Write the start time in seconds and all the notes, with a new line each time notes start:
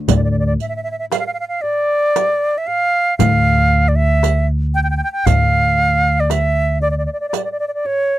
Already playing: D2
0.08 D2 D5, riq, darbuka dum
0.16 D5
0.24 D5
0.31 D5
0.39 D5
0.47 D5
0.60 E5, riq, darbuka ka
0.69 E5
0.76 E5
0.83 E5
0.91 E5
0.99 E5
1.12 F5, riq, darbuka tek
1.19 F5
1.26 F5
1.34 F5
1.40 F5
1.48 F5
1.62 D5, darbuka ka
2.16 riq, darbuka tek
2.58 E5
2.67 F5, darbuka ka
3.18 D2 F5, riq, darbuka dum
3.88 D5
3.96 E5
4.23 riq, darbuka tek
4.75 G5
4.83 G5
4.90 G5
4.97 G5
5.04 G5
5.12 G5
5.26 D2 F5, riq, darbuka dum
5.79 darbuka ka
6.20 D5
6.30 E5, riq, darbuka tek
6.82 D5, darbuka ka
6.91 D5
6.98 D5
7.06 D5
7.13 D5
7.20 D5
7.29 D5
7.33 D5, riq, darbuka tek
7.44 D5
7.52 D5
7.60 D5
7.68 D5
7.74 D5
7.85 C#5, darbuka ka